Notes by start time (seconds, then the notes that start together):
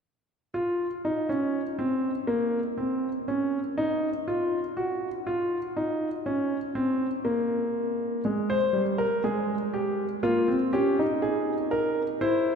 0.54 F4
1.05 D#4
1.29 C#4
1.79 C4
2.27 A#3
2.78 C4
3.28 C#4
3.78 D#4
4.28 F4
4.77 F#4
5.27 F4
5.77 D#4
6.26 C#4
6.75 C4
7.25 A#3
8.25 G#3
8.50 C5
8.73 G3
8.98 A#4
9.24 G#3 G#4
9.74 G4
10.23 A#3 F4
10.48 C4
10.73 C#4 G4
10.99 D#4
11.22 G#4
11.71 A#4
12.21 E4 C5